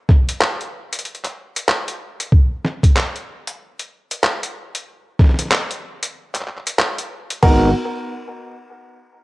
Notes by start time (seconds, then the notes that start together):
0.09 kick, snare
0.29 closed hi-hat
0.41 clap
0.61 closed hi-hat
0.93 closed hi-hat
0.99 closed hi-hat
1.05 closed hi-hat
1.15 closed hi-hat
1.24 clap, closed hi-hat
1.56 closed hi-hat
1.69 clap
1.88 closed hi-hat
2.20 closed hi-hat
2.32 kick
2.65 snare
2.83 kick, closed hi-hat
2.96 clap
3.16 closed hi-hat
3.47 closed hi-hat
3.79 closed hi-hat
4.11 closed hi-hat
4.24 clap
4.43 closed hi-hat
4.75 closed hi-hat
5.19 kick, snare
5.24 snare
5.29 snare
5.34 snare
5.39 snare, closed hi-hat
5.42 snare
5.45 snare
5.48 clap, snare
5.71 closed hi-hat
6.03 closed hi-hat
6.35 clap, closed hi-hat
6.41 clap
6.47 clap
6.57 clap
6.67 closed hi-hat
6.79 clap
6.98 closed hi-hat
7.30 closed hi-hat
7.43 G#1 B3 D#4 F#4 A#4, kick, crash